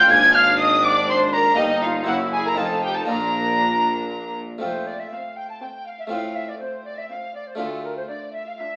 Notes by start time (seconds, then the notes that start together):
0.00 G5 G6
0.07 A#3 D4 F4 G#5 G#6
0.11 G#1 G#2 D4 G#6
0.35 F5 F6
0.60 D#5 D#6
0.84 D5 D6
1.09 C5 C6
1.33 A#4 A#5
1.54 A#3 D#4 G4 D#5
1.59 G1 G2 D#4
1.83 F4 F5
2.04 A#3 E4 F#4 F#5
2.08 F#1 F#2 E4
2.33 G#4 G#5
2.45 A#4 A#5
2.54 C4 D#4 F4 A4
2.58 F1 F2 D#4 A5
2.84 G4 G5
2.96 A4 A5
3.05 A#2 A#3 D4 F4 A#4 A#5
3.09 A#1 A#2 A#5
4.58 A3 C4 F4 C5
4.63 F1 F2
4.87 D5
5.00 E5
5.11 C4 A4 F5
5.37 G5
5.50 A5
5.61 C4 A4 G5
5.85 F5
5.99 E5
6.07 A3 C4 F4 F5
6.12 A1 A2 F5
6.35 E5
6.49 D5
6.59 C4 F4 C5
6.84 D5
6.98 E5
7.10 C4 F4 F5
7.35 D5
7.47 C5
7.55 A3 D4 F4 A4
7.59 D2 A4
7.84 A#4
7.97 C5
8.08 D4 F4 D5
8.33 E5
8.46 F5
8.57 D4 F4 E5